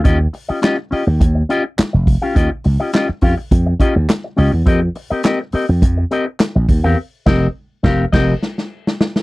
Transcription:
<<
  \new Staff \with { instrumentName = "Clean electric guitar" } { \time 4/4 \key ees \major \tempo 4 = 104 <des' f' g' ees''>16 r8 <des' f' g' ees''>16 <des' f' g' ees''>16 r16 <des' f' g' ees''>16 r8. <des' f' g' ees''>16 r4 <des' f' g' f''>16 | <des' f' g' ees''>16 r8 <des' f' g' ees''>16 <des' f' g' ees''>16 r16 <des' f' g' f''>16 r8. <des' f' g' ees''>16 r8. <des' f' g' ees''>16 r16 | <c' g' bes' ees''>16 r8 <c' g' bes' ees''>16 <c' g' bes' ees''>16 r16 <c' g' bes' ees''>16 r8. <c' g' bes' ees''>16 r4 <c' g' bes' f''>16 | r8 <c' g' bes' ees''>8 r8 <c' g' bes' f''>8 <c' g' bes' ees''>8 r4. | }
  \new Staff \with { instrumentName = "Slap bass" } { \clef bass \time 4/4 \key ees \major ees,8 r4 r16 ees,16 ees,8 r8. f,,8 r16 | ees,16 r16 des,16 r8. f,16 r16 f,8 r16 ees,16 r8 des,16 e,16 | f,8 r4 r16 f,16 f,8 r8. bes,,16 ees,16 e,16 | r8 f,,8 r8 f,,8 f,,8 r4. | }
  \new DrumStaff \with { instrumentName = "Drums" } \drummode { \time 4/4 <hh bd>8 hho8 <hc hh sn>8 hho8 <hh bd>8 hh8 <hc hh sn>8 <hho bd>8 | <hh bd>8 hho8 <hc hh sn>8 <hho bd>8 <hh bd>8 <hh bd>8 <hc hh sn>8 hho8 | <hh bd>8 hho8 <hc hh sn>8 hho8 <hh bd>8 hh8 <hc hh sn>8 <hho bd>8 | r8 <cymc bd sn>8 r8 <bd sn>8 <cymc bd sn>8 sn16 sn16 r16 sn16 sn16 sn16 | }
>>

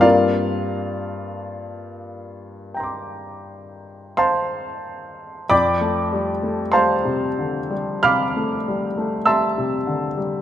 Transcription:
<<
  \new Staff \with { instrumentName = "Grand piano" } { \time 4/4 \key f \major \tempo 4 = 45 << { <f' bes' d'' f''>2. <c'' f'' a'' c'''>4 | <d'' g'' b'' d'''>4 <c'' f'' a'' c'''>4 <f'' b'' d''' f'''>4 <e'' a'' c''' e'''>4 | } \\ { r2 <g'' bes'' c''' d'''>2 | r1 | } >> }
  \new Staff \with { instrumentName = "Grand piano" } { \clef bass \time 4/4 \key f \major <g, g bes c' d'>1 | f,16 a16 g16 a16 g16 c16 d16 g16 c16 a16 g16 a16 g16 c16 d16 g16 | }
>>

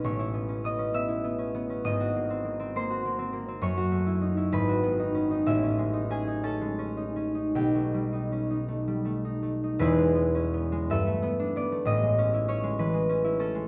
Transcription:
<<
  \new Staff \with { instrumentName = "Harp" } { \time 6/8 \key a \lydian \tempo 4. = 64 << { <b'' cis'''>4 dis'''8 e'''4. | dis'''4. bis''4. | cis'''4. b''4. | e''4 gis''8 a''4. |
g''2. | b'4. e''4 d''8 | dis''4 cis''8 b'4 a'8 | } \\ { <b' cis''>4 dis''8 e''4. | dis''4. bis'4. | cis''4. b'4. | e'4 gis'8 a'4. |
g'2. | <e' gis'>4. <a' b'>4.~ | <a' b'>2. | } >> }
  \new Staff \with { instrumentName = "Harp" } { \time 6/8 \key a \lydian <a,, cis'>16 e'16 b16 cis'16 b16 cis'16 b16 e'16 b16 cis'16 b16 cis'16 | gis,,16 fis'16 ais16 bis16 ais16 bis16 ais16 fis'16 ais16 bis16 ais16 bis16 | fis,16 fis'16 a16 e'16 dis'16 e'16 gis,,16 fis'16 b16 dis'16 cis'16 dis'16 | a,,16 cis'16 gis16 dis'16 cis'16 dis'16 cis'16 gis16 cis'16 dis'16 cis'16 dis'16 |
b,,16 a16 g16 dis'16 cis'16 dis'16 a16 g16 a16 dis'16 a16 dis'16 | <e,, e,>16 gis16 b16 cis'16 b16 gis16 g,16 a16 b16 d'16 b16 a16 | <a,, a,>16 gis16 cis'16 e'16 cis'16 gis16 e16 gis16 cis'16 e'16 cis'16 gis16 | }
>>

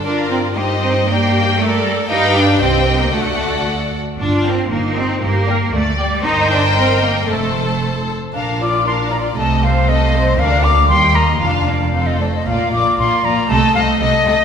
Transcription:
<<
  \new Staff \with { instrumentName = "Flute" } { \time 2/4 \key g \minor \tempo 4 = 116 r2 | r2 | r2 | r2 |
r2 | r2 | \key bes \major r2 | r2 |
f''8 d'''8 c'''8 bes''8 | a''8 f''8 ees''4 | f''8 d'''8 c'''8 bes''8 | f''4~ f''16 ees''16 d''16 ees''16 |
f''8 d'''8 c'''8 bes''8 | a''8 f''8 ees''4 | }
  \new Staff \with { instrumentName = "Violin section" } { \time 2/4 \key g \minor d''4 ees''4 | g''8 g''8 d''4 | g''4 g''4 | fis''4. r8 |
r8 g''8 r8 g''8 | r8 g''8 r8 g''8 | \key bes \major g''2 | a''4. r8 |
f''8 d''8 f''8 d''8 | ees''8 c''8 ees''8 c''8 | d''8 f''8 g''8 ees''8 | f''8 d''8 a'8 c''8 |
d''8 d''8 d''8 d''8 | ees''8 ees''8 ees''8 ees''8 | }
  \new Staff \with { instrumentName = "Violin section" } { \time 2/4 \key g \minor << { bes'4 c''4 | d''4 d''4 | f''4 ees''4 | d''4. r8 |
r8 d''8 r8 ees''8 | r8 d''8 r8 d''8 | \key bes \major ees''2 | c''4. r8 |
bes'8 d''8 bes'8 d''8 | a'8 c''8 a'8 c''8 | bes'8 d''8 g'8 bes'8 | f'8 d'8 f'8 a'8 |
f'8 f'8 f'8 f'8 | a'8 a'8 a'8 a'8 | } \\ { bes'4 g'4 | g'4 bes'4 | b'4 c''8 bes'8 | a'4. r8 |
r8 bes'8 r8 g'8 | r8 g'8 r8 g'8 | bes'2 | a'4. r8 |
r2 | r2 | r2 | r2 |
r2 | r2 | } >> }
  \new Staff \with { instrumentName = "Viola section" } { \time 2/4 \key g \minor f'4 ees'4 | g'4 a'4 | g'4 g'4 | fis'4. r8 |
f'4 ees'4 | g'8 bes'8 d''4 | \key bes \major c''4 bes'4 | a'4. r8 |
d'8 f'8 d'8 f'8 | a8 c'8 a8 c'8 | d'8 bes8 g8 bes8 | d'8 bes8 c'8 a8 |
bes8 bes8 bes8 bes8 | a8 a8 a8 a8 | }
  \new Staff \with { instrumentName = "Cello section" } { \time 2/4 \key g \minor d'8 c'8 bes8 c'8 | bes4 a8 g8 | ees'8 d'8 c'8. bes16 | a4 r4 |
d'8 c'8 bes8 c'8 | bes4 a8 g8 | \key bes \major ees'8 d'8 c'8 bes8 | a4 r4 |
bes,2 | c2 | d,4 ees,4 | f,4. r8 |
bes,8 bes,8 bes,8 bes,8 | c8 c8 c8 c8 | }
  \new Staff \with { instrumentName = "Double bass section" } { \clef bass \time 2/4 \key g \minor g,2~ | g,2 | g,4 c,4 | d,4. r8 |
g,,4 g,,4 | g,,4 d,4 | \key bes \major g,,2 | f,,4. r8 |
bes,,2 | c,2 | d,4 ees,4 | f,,4. r8 |
bes,,8 bes,,8 bes,,8 bes,,8 | c,8 c,8 c,8 c,8 | }
>>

